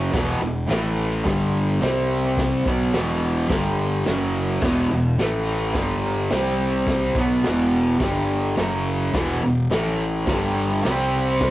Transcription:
0.00 0.11 F#1 loud
0.00 0.12 F#2 loud
0.00 0.12 C#3 loud
0.00 0.13 F#3 loud
0.13 0.40 E1 medium
0.13 0.40 E2 loud
0.13 0.40 B2 loud
0.13 0.41 E3 loud
0.13 kick loud
0.13 snare loud
0.13 open hi-hat medium
0.41 0.67 E1 medium
0.41 0.64 E2 medium
0.41 0.64 B2 medium
0.67 1.22 A1 loud
0.67 1.24 A2 loud
0.67 1.24 E3 medium
0.67 1.25 A3 loud
0.67 snare loud
0.67 open hi-hat medium
1.25 1.78 G1 medium
1.25 1.81 G2 loud
1.25 1.81 D3 loud
1.25 1.81 G3 loud
1.25 kick loud
1.25 snare loud
1.25 open hi-hat medium
1.81 2.62 C2 loud
1.81 2.65 C3 medium
1.81 2.65 G3 loud
1.81 2.66 C4 loud
1.81 snare loud
1.81 open hi-hat medium
2.37 kick loud
2.37 snare loud
2.37 open hi-hat medium
2.65 2.92 B1 medium
2.65 2.93 B2 medium
2.65 2.94 F#3 medium
2.65 2.94 B3 loud
2.65 kick loud
2.93 3.47 E1 loud
2.93 3.49 E2 medium
2.93 3.50 B2 loud
2.93 3.50 E3 loud
2.93 snare loud
2.93 open hi-hat medium
3.49 4.02 G1 medium
3.49 4.06 G2 loud
3.49 4.06 D3 loud
3.49 4.06 G3 loud
3.49 kick loud
3.49 snare loud
3.49 open hi-hat medium
4.05 4.60 F#1 loud
4.05 4.62 F#2 medium
4.05 4.62 C#3 medium
4.05 4.63 F#3 loud
4.05 snare loud
4.05 open hi-hat medium
4.61 4.89 E1 medium
4.61 4.90 E2 medium
4.61 4.91 B2 loud
4.61 4.91 E3 loud
4.61 kick loud
4.61 snare loud
4.61 crash loud
4.91 5.17 E1 medium
4.91 5.14 E2 medium
4.91 5.14 B2 medium
5.19 5.72 A1 loud
5.19 5.74 A2 loud
5.19 5.74 E3 loud
5.19 5.75 A3 loud
5.19 snare loud
5.19 open hi-hat medium
5.74 6.28 G1 medium
5.74 6.30 G2 loud
5.74 6.31 D3 loud
5.74 6.31 G3 loud
5.74 kick loud
5.74 snare loud
5.74 open hi-hat medium
6.30 7.13 C2 loud
6.30 7.16 C3 loud
6.30 7.16 G3 medium
6.30 7.16 C4 loud
6.30 snare loud
6.30 open hi-hat medium
6.87 kick loud
6.87 snare loud
6.87 open hi-hat medium
7.15 7.42 B1 loud
7.15 7.43 B2 medium
7.15 7.45 F#3 medium
7.15 7.45 B3 loud
7.15 kick loud
7.43 7.98 E1 loud
7.43 8.01 E2 medium
7.43 8.02 B2 loud
7.43 8.02 E3 loud
7.43 snare loud
7.43 open hi-hat medium
8.00 8.54 G1 medium
8.00 8.56 G2 loud
8.00 8.57 D3 loud
8.00 8.58 G3 loud
8.00 kick loud
8.00 snare loud
8.00 open hi-hat medium
8.56 9.11 F#1 loud
8.56 9.13 F#2 medium
8.56 9.13 C#3 loud
8.56 9.14 F#3 loud
8.56 snare loud
8.56 open hi-hat medium
9.13 9.41 E1 medium
9.13 9.42 E2 medium
9.13 9.42 B2 medium
9.13 9.42 E3 loud
9.13 kick loud
9.13 snare loud
9.13 open hi-hat medium
9.43 9.71 E1 medium
9.43 9.66 E2 medium
9.43 9.66 B2 medium
9.70 10.25 A1 loud
9.70 10.28 A2 medium
9.70 10.29 E3 loud
9.70 10.28 A3 loud
9.70 snare loud
9.70 open hi-hat medium
10.26 10.81 G1 loud
10.26 10.84 G2 loud
10.26 10.84 D3 loud
10.26 10.83 G3 loud
10.26 kick loud
10.26 snare loud
10.26 open hi-hat medium
10.84 11.50 C2 loud
10.84 11.50 C3 loud
10.84 11.50 G3 loud
10.84 11.50 C4 loud
10.84 snare loud
10.84 open hi-hat medium
11.40 kick loud
11.40 snare loud
11.40 open hi-hat medium

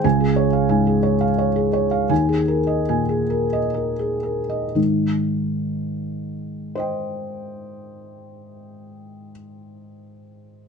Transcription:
0.04 2.06 C#2 medium
0.04 0.30 G#5 medium
0.20 0.46 G#4 soft
0.36 0.63 C#5 medium
0.53 0.79 F5 soft
0.69 1.24 G#2 soft
0.69 0.96 G#5 soft
0.87 1.14 G#4 soft
1.03 1.31 C#5 soft
1.21 1.48 F5 soft
1.38 1.67 C#5 soft
1.56 1.85 G#4 soft
1.73 2.03 C#5 soft
1.91 2.10 F5 soft
2.09 4.72 D#2 soft
2.09 2.40 G#5 medium
2.29 2.60 G#4 soft
2.48 2.80 A#4 soft
2.67 3.00 D#5 soft
2.89 3.58 A#2 soft
2.89 3.22 G#5 soft
3.09 3.44 G#4 soft
3.30 3.67 A#4 soft
3.53 3.91 D#5 soft
3.74 4.14 A#4 soft
3.99 4.40 G#4 soft
4.23 4.65 A#4 soft
4.49 4.75 D#5 soft
4.75 9.30 G#2 soft
4.75 9.30 D#3 soft
6.75 10.68 C5 soft
6.75 10.68 D#5 soft
6.75 10.68 G5 soft

